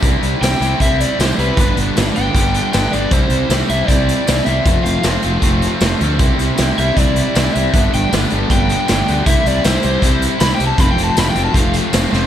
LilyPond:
<<
  \new Staff \with { instrumentName = "Overdriven electric guitar" } { \time 4/4 \key c \major \tempo 4 = 156 r4 g''4 e''8 d''8 c''8 b'8~ | b'8 r4 g''4. g''8 d''8 | c''4 r8 e''8 d''4. e''8~ | e''8 f''8 r2. |
r4. e''8 d''4. e''8~ | e''8 g''8 r4 g''2 | e''8 d''8 c''8 c''4 r8 \tuplet 3/2 { b''8 g''8 a''8 } | \tuplet 3/2 { b''8 g''8 a''8 b''8 g''8 a''8 } f''8 r4. | }
  \new Staff \with { instrumentName = "Distorted electric guitar" } { \time 4/4 \key c \major <c g c' e'>4 <c g c' e'>8 <c g c' e'>8 <c g c' e'>4 <c g c' e'>8 <c g c' e'>8 | <g, d g b d'>4 <g, d g b d'>8 <g, d g b d'>8 <g, d g b d'>4 <g, d g b d'>8 <g, d g b d'>8 | <c g c' e'>4 <c g c' e'>8 <c g c' e'>8 <c g c' e'>4 <c g c' e'>8 <c g c' e'>8 | <f a c' f'>4 <f a c' f'>8 <f a c' f'>8 <f a c' f'>4 <f a c' f'>8 <f a c' f'>8 |
<c g c' e'>4 <c g c' e'>8 <c g c' e'>8 <c g c' e'>4 <c g c' e'>8 <c g c' e'>8 | <g, d g b d'>4 <g, d g b d'>8 <g, d g b d'>8 <g, d g b d'>4 <g, d g b d'>8 <g, d g b d'>8 | <c g c' e'>4 <c g c' e'>8 <c g c' e'>8 <c g c' e'>4 <c g c' e'>8 <c g c' e'>8 | <f a c' f'>4 <f a c' f'>8 <f a c' f'>8 <f a c' f'>4 <f a c' f'>8 <f a c' f'>8 | }
  \new Staff \with { instrumentName = "Fingered electric bass" } { \clef bass \time 4/4 \key c \major c,8 c,8 c,8 c,8 c,4 c,8 c,8 | g,,8 g,,8 g,,8 g,,8 g,,4 g,,8 g,,8 | c,8 c,8 c,8 c,8 c,4 c,8 c,8 | f,,8 f,,8 f,,8 f,,8 f,,4 f,,8 d,8 |
c,8 c,8 c,8 c,8 c,4 c,8 c,8 | g,,8 g,,8 g,,8 g,,8 g,,4 g,,8 d,8 | c,8 c,8 c,8 c,8 c,4 c,8 c,8 | f,,8 f,,8 f,,8 f,,8 f,,4 f,,8 f,,8 | }
  \new DrumStaff \with { instrumentName = "Drums" } \drummode { \time 4/4 <hh bd>8 hh8 <hh sn tamb>8 hh8 <hh bd>8 hh8 <hh sn tamb>8 hh8 | <hh bd>8 hh8 <hh sn tamb>16 sn16 hh8 <hh bd>8 hh8 <hh sn tamb>8 hh8 | <hh bd>8 hh8 <hh sn tamb>8 hh8 <hh bd>8 hh8 <hh sn tamb>8 hh8 | <hh bd>8 hh8 <hh sn tamb>8 hh8 <hh bd>8 hh8 <hh sn tamb>8 hh8 |
<hh bd>8 hh8 <hh sn tamb>8 hh8 <hh bd>8 hh8 <hh sn tamb>8 hh8 | <hh bd>8 hh8 <hh sn tamb>8 hh8 <hh bd>8 hh8 <hh sn tamb>8 hh8 | <hh bd>8 hh8 <hh sn tamb>8 hh8 <hh bd>8 hh8 <hh sn tamb>8 hh8 | <hh bd>8 hh8 <hh sn tamb>16 sn16 hh8 <hh bd>8 hh8 <hh sn tamb>8 sn8 | }
>>